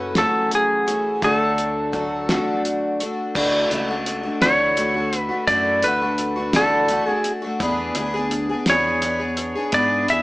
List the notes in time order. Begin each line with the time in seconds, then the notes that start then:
Already playing: F#1 E3 A3 C#4 F#4 B4
0.15 F#2 C#3 E3 A3 C#4 F#4 A4, snare, closed hi-hat
0.51 G#4, closed hi-hat
0.87 E3 A3 C#4 F#4, closed hi-hat
1.22 D2 D3 F#3 A3 D4 F#4 A4, kick, closed hi-hat
1.58 closed hi-hat
1.92 F#3 A3 D4 F#4, kick, closed hi-hat
2.29 D3 F#3 A3 D4 F#4, snare, closed hi-hat
2.65 closed hi-hat
3.00 A3 D4 F#4, closed hi-hat
3.35 D2 D3 E3 A3 D4 F#4, kick, crash
3.70 C#2 E3 A3 D4 F#4, closed hi-hat
3.88 A3 D4 F#4
4.06 closed hi-hat
4.23 A3 D4 F#4
4.41 D2 D3 E3 A3 D4 F#4 C#5, snare, closed hi-hat
4.76 E3 A3 D4 F#4, closed hi-hat
4.94 A3 D4 F#4
5.13 closed hi-hat
5.19 B4
5.29 A3 D4 F#4
5.47 F#2 D3 E3 A3 D4 F#4 D5, kick, closed hi-hat
5.83 D2 E3 A3 D4 F#4 B4, closed hi-hat
6.01 A3 D4 F#4
6.18 closed hi-hat
6.36 A3 D4 F#4
6.53 D3 E3 A3 D4 F#4 A4, snare, closed hi-hat
6.88 E3 A3 D4 F#4, closed hi-hat
7.07 D4 F#4 G#4
7.11 A3
7.24 closed hi-hat
7.42 D4 F#4
7.46 A3
7.60 E2 E3 B3 D4 G#4, kick, closed hi-hat
7.95 D2 E3 B3 D4, closed hi-hat
8.00 G#4
8.14 B3 D4 G#4
8.31 closed hi-hat
8.49 B3 D4 G#4
8.66 E2 E3 B3 D4 G#4 C#5, snare, closed hi-hat
9.01 E3 B3 D4 G#4, closed hi-hat
9.19 B3 D4 G#4
9.37 closed hi-hat
9.55 B3 D4 G#4
9.72 G#2 E3 B3 D4 G#4 D5, kick, closed hi-hat
10.08 E2 E3 B3 D4 G#4 E5, closed hi-hat